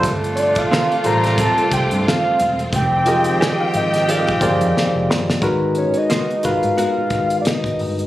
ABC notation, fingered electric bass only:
X:1
M:4/4
L:1/16
Q:"Swing 16ths" 1/4=89
K:Ablyd
V:1 name="Fingered electric bass" clef=bass
G,,,4 z2 =A,,,3 z C,, G,, z2 =E,,,2 | F,,,4 z2 A,,,3 z G,,, F,, z F,,, G,,,2 | A,,,3 z3 A,,, A,, z2 A,,,2 z A,,, G,,,2 |]